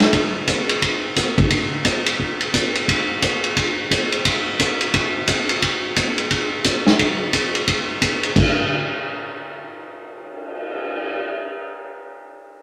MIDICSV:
0, 0, Header, 1, 3, 480
1, 0, Start_track
1, 0, Tempo, 342857
1, 182, Time_signature, 4, 2, 24, 8
1, 17675, End_track
2, 0, Start_track
2, 0, Title_t, "Cymbal swell"
2, 12004, Note_on_c, 9, 59, 47
2, 15434, Note_off_c, 9, 59, 0
2, 17675, End_track
3, 0, Start_track
3, 0, Title_t, "Drums"
3, 1, Note_on_c, 9, 51, 40
3, 2, Note_on_c, 9, 38, 34
3, 141, Note_off_c, 9, 51, 0
3, 142, Note_off_c, 9, 38, 0
3, 178, Note_on_c, 9, 51, 57
3, 182, Note_on_c, 9, 36, 25
3, 318, Note_off_c, 9, 51, 0
3, 322, Note_off_c, 9, 36, 0
3, 665, Note_on_c, 9, 44, 47
3, 665, Note_on_c, 9, 51, 57
3, 667, Note_on_c, 9, 36, 18
3, 805, Note_off_c, 9, 44, 0
3, 805, Note_off_c, 9, 51, 0
3, 807, Note_off_c, 9, 36, 0
3, 969, Note_on_c, 9, 51, 46
3, 1109, Note_off_c, 9, 51, 0
3, 1149, Note_on_c, 9, 36, 19
3, 1150, Note_on_c, 9, 51, 57
3, 1289, Note_off_c, 9, 36, 0
3, 1290, Note_off_c, 9, 51, 0
3, 1629, Note_on_c, 9, 44, 57
3, 1629, Note_on_c, 9, 51, 58
3, 1630, Note_on_c, 9, 36, 19
3, 1769, Note_off_c, 9, 44, 0
3, 1769, Note_off_c, 9, 51, 0
3, 1770, Note_off_c, 9, 36, 0
3, 1930, Note_on_c, 9, 36, 54
3, 1931, Note_on_c, 9, 51, 41
3, 2070, Note_off_c, 9, 36, 0
3, 2071, Note_off_c, 9, 51, 0
3, 2105, Note_on_c, 9, 51, 60
3, 2111, Note_on_c, 9, 36, 23
3, 2245, Note_off_c, 9, 51, 0
3, 2251, Note_off_c, 9, 36, 0
3, 2585, Note_on_c, 9, 44, 47
3, 2585, Note_on_c, 9, 51, 56
3, 2590, Note_on_c, 9, 36, 21
3, 2725, Note_off_c, 9, 44, 0
3, 2725, Note_off_c, 9, 51, 0
3, 2730, Note_off_c, 9, 36, 0
3, 2888, Note_on_c, 9, 51, 58
3, 3028, Note_off_c, 9, 51, 0
3, 3073, Note_on_c, 9, 36, 19
3, 3213, Note_off_c, 9, 36, 0
3, 3367, Note_on_c, 9, 51, 40
3, 3507, Note_off_c, 9, 51, 0
3, 3552, Note_on_c, 9, 36, 22
3, 3552, Note_on_c, 9, 44, 49
3, 3552, Note_on_c, 9, 51, 57
3, 3692, Note_off_c, 9, 36, 0
3, 3692, Note_off_c, 9, 44, 0
3, 3692, Note_off_c, 9, 51, 0
3, 3855, Note_on_c, 9, 51, 43
3, 3995, Note_off_c, 9, 51, 0
3, 4036, Note_on_c, 9, 36, 26
3, 4042, Note_on_c, 9, 51, 62
3, 4176, Note_off_c, 9, 36, 0
3, 4182, Note_off_c, 9, 51, 0
3, 4512, Note_on_c, 9, 44, 42
3, 4512, Note_on_c, 9, 51, 58
3, 4513, Note_on_c, 9, 36, 20
3, 4652, Note_off_c, 9, 44, 0
3, 4652, Note_off_c, 9, 51, 0
3, 4653, Note_off_c, 9, 36, 0
3, 4812, Note_on_c, 9, 51, 42
3, 4952, Note_off_c, 9, 51, 0
3, 4992, Note_on_c, 9, 36, 23
3, 4992, Note_on_c, 9, 51, 60
3, 5132, Note_off_c, 9, 36, 0
3, 5132, Note_off_c, 9, 51, 0
3, 5475, Note_on_c, 9, 36, 18
3, 5478, Note_on_c, 9, 44, 50
3, 5478, Note_on_c, 9, 51, 61
3, 5615, Note_off_c, 9, 36, 0
3, 5618, Note_off_c, 9, 44, 0
3, 5618, Note_off_c, 9, 51, 0
3, 5772, Note_on_c, 9, 51, 41
3, 5912, Note_off_c, 9, 51, 0
3, 5951, Note_on_c, 9, 51, 67
3, 5953, Note_on_c, 9, 36, 25
3, 6091, Note_off_c, 9, 51, 0
3, 6093, Note_off_c, 9, 36, 0
3, 6433, Note_on_c, 9, 36, 20
3, 6433, Note_on_c, 9, 44, 52
3, 6433, Note_on_c, 9, 51, 62
3, 6573, Note_off_c, 9, 36, 0
3, 6573, Note_off_c, 9, 44, 0
3, 6573, Note_off_c, 9, 51, 0
3, 6729, Note_on_c, 9, 51, 48
3, 6869, Note_off_c, 9, 51, 0
3, 6911, Note_on_c, 9, 51, 59
3, 6913, Note_on_c, 9, 36, 25
3, 7051, Note_off_c, 9, 51, 0
3, 7053, Note_off_c, 9, 36, 0
3, 7385, Note_on_c, 9, 44, 49
3, 7385, Note_on_c, 9, 51, 63
3, 7392, Note_on_c, 9, 36, 21
3, 7525, Note_off_c, 9, 44, 0
3, 7525, Note_off_c, 9, 51, 0
3, 7532, Note_off_c, 9, 36, 0
3, 7687, Note_on_c, 9, 51, 43
3, 7827, Note_off_c, 9, 51, 0
3, 7871, Note_on_c, 9, 51, 61
3, 7872, Note_on_c, 9, 36, 21
3, 8011, Note_off_c, 9, 51, 0
3, 8012, Note_off_c, 9, 36, 0
3, 8348, Note_on_c, 9, 44, 53
3, 8348, Note_on_c, 9, 51, 60
3, 8352, Note_on_c, 9, 36, 19
3, 8488, Note_off_c, 9, 44, 0
3, 8488, Note_off_c, 9, 51, 0
3, 8492, Note_off_c, 9, 36, 0
3, 8649, Note_on_c, 9, 51, 43
3, 8789, Note_off_c, 9, 51, 0
3, 8828, Note_on_c, 9, 51, 56
3, 8832, Note_on_c, 9, 36, 20
3, 8968, Note_off_c, 9, 51, 0
3, 8972, Note_off_c, 9, 36, 0
3, 9301, Note_on_c, 9, 44, 56
3, 9301, Note_on_c, 9, 51, 63
3, 9310, Note_on_c, 9, 36, 18
3, 9441, Note_off_c, 9, 44, 0
3, 9441, Note_off_c, 9, 51, 0
3, 9450, Note_off_c, 9, 36, 0
3, 9612, Note_on_c, 9, 38, 42
3, 9752, Note_off_c, 9, 38, 0
3, 9788, Note_on_c, 9, 51, 62
3, 9791, Note_on_c, 9, 36, 21
3, 9928, Note_off_c, 9, 51, 0
3, 9931, Note_off_c, 9, 36, 0
3, 10262, Note_on_c, 9, 44, 48
3, 10262, Note_on_c, 9, 51, 63
3, 10268, Note_on_c, 9, 36, 17
3, 10402, Note_off_c, 9, 44, 0
3, 10402, Note_off_c, 9, 51, 0
3, 10408, Note_off_c, 9, 36, 0
3, 10567, Note_on_c, 9, 51, 42
3, 10707, Note_off_c, 9, 51, 0
3, 10745, Note_on_c, 9, 51, 60
3, 10747, Note_on_c, 9, 36, 24
3, 10885, Note_off_c, 9, 51, 0
3, 10887, Note_off_c, 9, 36, 0
3, 11224, Note_on_c, 9, 36, 22
3, 11224, Note_on_c, 9, 44, 40
3, 11224, Note_on_c, 9, 51, 58
3, 11364, Note_off_c, 9, 36, 0
3, 11364, Note_off_c, 9, 44, 0
3, 11364, Note_off_c, 9, 51, 0
3, 11525, Note_on_c, 9, 51, 41
3, 11665, Note_off_c, 9, 51, 0
3, 11704, Note_on_c, 9, 36, 61
3, 11706, Note_on_c, 9, 49, 65
3, 11844, Note_off_c, 9, 36, 0
3, 11846, Note_off_c, 9, 49, 0
3, 17675, End_track
0, 0, End_of_file